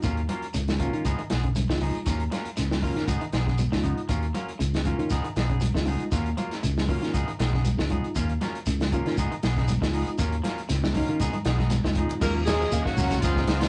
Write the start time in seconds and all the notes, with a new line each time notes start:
0.03 D#2 D#3 F#3 A#3 C#4 F4, kick, closed hi-hat, low conga, shekere
0.17 closed hi-hat
0.29 F3 F#3 A#3 C#4 F4, closed hi-hat, high conga, shekere
0.42 closed hi-hat
0.54 C#2 C#3, closed hi-hat, shekere
0.67 C#4 F4, snare, closed hi-hat, high conga
0.78 D#3 F#3 A#3 C#4 F4, kick, closed hi-hat, shekere
0.93 D#3 A#3 C#4 F4, closed hi-hat
1.05 C#2 F3 B3 D#4 G#4, kick, closed hi-hat, shekere
1.18 D#3, muted fingered electric bass stroke, closed hi-hat
1.30 B1 F3 B3 G#4, muted clean electric guitar stroke, snare, closed hi-hat, high conga, shekere
1.43 C#3, kick, closed hi-hat
1.56 C#3, closed hi-hat, high conga, low conga, shekere
1.69 C#2 D#3 G#3 B3 D#4 F4, kick, snare
1.81 C#3 F3 D#4 G#4, muted clean electric guitar stroke, open hi-hat, high conga, shekere
1.95 closed hi-hat
2.06 D#2 D#3 F#3 A#3 C#4 F4, kick, snare, closed hi-hat, low conga, shekere
2.20 closed hi-hat
2.31 F3 F#3 A#3 C#4 F4, snare, closed hi-hat, high conga, shekere
2.45 closed hi-hat
2.57 C#2 C#3, snare, closed hi-hat, shekere
2.71 C#4 F4, snare, high conga
2.82 D#3 F#3 A#3 C#4 F4, kick, open hi-hat, shekere
2.96 D#3 A#3 C#4 F4, snare, closed hi-hat, low conga
3.07 C#2 F3 B3 D#4 G#4, kick, closed hi-hat, shekere
3.21 D#3, closed hi-hat
3.32 B1 F3 B3 D#4 G#4, snare, closed hi-hat, high conga, shekere
3.46 C#3 B3 G#4, kick, snare
3.58 B2, closed hi-hat, high conga, low conga, shekere
3.72 C#2 D#3 G#3 B3 D#4 F4, kick, snare
3.83 C#3 F3 B3 D#4, muted clean electric guitar stroke, kick, closed hi-hat, shekere
3.98 closed hi-hat
4.09 D#2 D#3 F#3 A#3 C#4 F4, kick, closed hi-hat, low conga, shekere
4.23 closed hi-hat
4.34 F3 F#3 A#3 C#4 F4, closed hi-hat, high conga, shekere
4.48 closed hi-hat
4.59 C#2 C#3, closed hi-hat, shekere
4.73 C#4 F4, snare, closed hi-hat, high conga
4.84 D#3 F#3 A#3 C#4 F4, kick, closed hi-hat, shekere
4.99 D#3 C#4 F4, muted clean electric guitar stroke, closed hi-hat, low conga
5.10 C#2 F3 B3 D#4 G#4, kick, closed hi-hat, shekere
5.24 D#3, muted fingered electric bass stroke, closed hi-hat
5.36 B1 F3 B3 D#4 G#4, snare, closed hi-hat, high conga, shekere
5.50 C#3 B3 D#4 G#4, kick, closed hi-hat
5.61 B2, closed hi-hat, high conga, low conga, shekere
5.74 C#2 D#3 G#3 B3 D#4 F4, kick, snare
5.86 C#3 F3 B3 D#4 G#4, open hi-hat, high conga, shekere
6.00 closed hi-hat
6.12 D#2 D#3 F#3 A#3 C#4 F4, kick, snare, closed hi-hat, low conga, shekere
6.26 closed hi-hat
6.37 F3 F#3 A#3 F4, muted clean electric guitar stroke, closed hi-hat, high conga, shekere
6.51 snare, closed hi-hat
6.63 C#2 C#3, closed hi-hat, shekere
6.76 C#4 F4, snare, high conga
6.87 D#3 F#3 A#3 C#4 F4, kick, open hi-hat, shekere
7.02 D#3 A#3 C#4 F4, snare, closed hi-hat
7.14 C#2 F3 B3 D#4 G#4, kick, closed hi-hat, shekere
7.28 D#3, closed hi-hat
7.39 B1 F3 B3 D#4 G#4, snare, closed hi-hat, high conga, shekere
7.53 C#3 B3 D#4 G#4, kick, snare
7.65 B2, closed hi-hat, high conga, low conga, shekere
7.77 C#2 D#3 G#3 B3 D#4 F4, kick, snare
7.90 C#3 F3 B3 D#4 G#4, kick, closed hi-hat, high conga, shekere
8.04 closed hi-hat
8.16 D#2 D#3 A#3 C#4 F4, muted clean electric guitar stroke, kick, closed hi-hat, low conga, shekere
8.29 closed hi-hat
8.41 F3 F#3 A#3 C#4 F4, snare, closed hi-hat, high conga, shekere
8.55 closed hi-hat
8.66 C#2 C#3, closed hi-hat, shekere
8.80 C#4 F4, snare, closed hi-hat, high conga
8.92 D#3 F#3 A#3 C#4 F4, kick, closed hi-hat, shekere
9.06 D#3 A#3 C#4 F4, snare, closed hi-hat, low conga
9.17 C#2 F3 B3 D#4 G#4, kick, closed hi-hat, shekere
9.32 D#3, closed hi-hat
9.43 B1 B3 G#4, muted clean electric guitar stroke, snare, closed hi-hat, high conga, shekere
9.57 C#3 B3 D#4 G#4, kick, snare, closed hi-hat
9.68 B2, closed hi-hat, high conga, low conga, shekere
9.81 C#2 D#3 G#3 B3 D#4 F4, kick, snare
9.93 F3 B3 D#4 G#4, open hi-hat, shekere
10.07 closed hi-hat
10.18 D#2 D#3 F#3 A#3 C#4 F4, kick, closed hi-hat, low conga, shekere
10.32 closed hi-hat
10.44 F3 F#3 A#3 C#4 F4, snare, closed hi-hat, high conga, shekere
10.58 closed hi-hat
10.69 C#2 C#3, snare, closed hi-hat, shekere
10.82 C#4 F4, snare, high conga
10.94 D#3 F#3 A#3 C#4 D#4 F4, kick, open hi-hat, shekere
11.08 D#3 A#3 C#4 F4, closed hi-hat
11.20 C#2 F3 B3 D#4 G#4, kick, closed hi-hat, shekere
11.33 D#3, muted fingered electric bass stroke, closed hi-hat, high conga
11.45 B1 F3 B3 D#4 G#4, snare, closed hi-hat, high conga, shekere
11.59 B3 D#4 G#4, muted clean electric guitar stroke, kick, snare, high conga
11.70 B2, snare, closed hi-hat, high conga, shekere
11.84 C#2 D#3 G#3 B3 D#4 F4, kick, snare, low conga
11.95 C#3 F3 D#4 G#4, kick, closed hi-hat, shekere
12.09 closed hi-hat, low conga
12.20 D#2 F#3 G#3 A#3 C#4 F4 A#4, muted clean electric guitar stroke, kick, crash, shekere
12.45 F#3 G#3 A#3 C#4 F4 G#4, snare, closed hi-hat, high conga, shekere
12.60 F3, snare, shekere
12.71 D#2 F#3 A#3 C#4 F5, closed hi-hat, shekere
12.83 D#3 F#3 F#4, kick, snare
12.97 C#2 F#3 A#3 C#4 F4, open hi-hat, high conga, low conga, shekere
13.11 C#3, kick, snare, closed hi-hat, shekere
13.20 C#2 F3 B3 D#4 F4, kick, closed hi-hat, low conga, shekere
13.24 G#4
13.36 B2 B3 D#4 G#4, kick, snare
13.47 C#2 F3 B3 D#4 G#4, snare, closed hi-hat, high conga, shekere
13.58 D#3 F3 G#3 B3 F4, snare, closed hi-hat, shekere
13.63 D#4 F4